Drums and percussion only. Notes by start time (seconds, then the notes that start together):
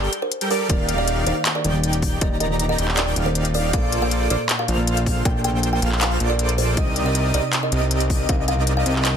0.13 closed hi-hat
0.32 closed hi-hat
0.41 closed hi-hat
0.51 open hi-hat
0.70 kick, closed hi-hat
0.89 closed hi-hat
1.08 closed hi-hat
1.27 closed hi-hat
1.45 clap, closed hi-hat
1.64 closed hi-hat
1.84 closed hi-hat
1.93 closed hi-hat
2.02 kick, open hi-hat
2.21 kick, closed hi-hat
2.40 closed hi-hat
2.60 closed hi-hat
2.78 closed hi-hat
2.88 clap
2.97 clap, closed hi-hat
3.16 closed hi-hat
3.35 closed hi-hat
3.45 closed hi-hat
3.54 open hi-hat
3.73 kick, closed hi-hat
3.92 closed hi-hat
4.11 closed hi-hat
4.30 closed hi-hat
4.49 clap, closed hi-hat
4.68 closed hi-hat
4.87 closed hi-hat
4.97 closed hi-hat
5.06 kick, open hi-hat
5.25 kick, closed hi-hat
5.44 closed hi-hat
5.63 closed hi-hat
5.82 closed hi-hat
5.92 clap
6.01 clap, closed hi-hat
6.20 closed hi-hat
6.39 closed hi-hat
6.49 closed hi-hat
6.58 open hi-hat
6.77 kick, closed hi-hat
6.96 closed hi-hat
7.15 closed hi-hat
7.34 closed hi-hat
7.53 clap, closed hi-hat
7.72 closed hi-hat
7.91 closed hi-hat
8.00 closed hi-hat
8.10 kick, open hi-hat
8.29 kick, closed hi-hat
8.48 closed hi-hat
8.67 closed hi-hat
8.86 closed hi-hat
8.96 clap
9.05 clap, closed hi-hat